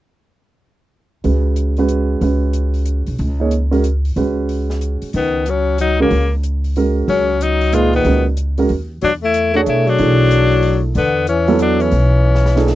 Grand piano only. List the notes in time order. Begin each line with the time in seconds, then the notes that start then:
1.24 G#3 C#4 F#4 B4
1.78 G#3 C#4 F#4 B4
2.21 G#3 C#4 F#4 B4
3.40 A#3 D#4 G#4 C#5
3.71 G#3 C#4 F#4 A#4
4.16 G#3 C#4 F#4 B4
5.99 G#3 C#4 F#4 A#4
6.77 G#3 C#4 F#4 A#4
7.73 A#2 D#4 G#4 B4
8.05 G#3 C#4 F#4 A#4
8.58 G#3 C#4 F#4 A#4
9.55 A3 D4 G#4 C#5
9.99 E3 A3 D4 G#4
11.48 F#3 B3 E4 A4
12.56 E3 A3 D4 G#4